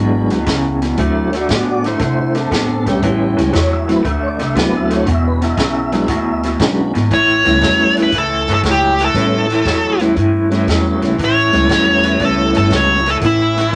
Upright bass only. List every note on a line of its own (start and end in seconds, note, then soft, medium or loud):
0.00 0.27 G#1 medium
0.31 0.46 D2 medium
0.47 0.92 C#2 medium
0.98 1.43 D2 medium
1.49 1.94 A2 medium
2.00 2.45 C3 medium
2.51 2.82 A2 medium
2.86 3.01 B1 medium
3.03 3.33 A1 medium
3.38 3.52 C#2 medium
3.53 3.99 E2 medium
4.04 4.35 D2 medium
4.39 4.54 C2 medium
4.55 5.08 D2 medium
5.06 5.51 E1 medium
5.58 6.03 B1 medium
6.08 6.53 D2 medium
6.60 6.90 B1 medium
6.95 7.09 G#1 medium
7.11 7.42 A1 medium
7.46 7.60 C#2 medium
7.62 8.07 E2 medium
8.12 8.43 C#2 medium
8.48 8.62 G1 medium
8.63 9.09 C#2 medium
9.14 9.60 A1 medium
9.65 10.10 E2 medium
10.16 10.62 G2 medium
10.67 10.98 E2 medium
11.02 11.17 C#2 medium
11.18 11.49 A1 medium
11.54 11.68 C#2 medium
11.69 12.14 E2 medium
12.20 12.51 C#2 medium
12.56 12.70 G1 medium
12.71 13.16 C#2 medium
13.22 13.67 A1 medium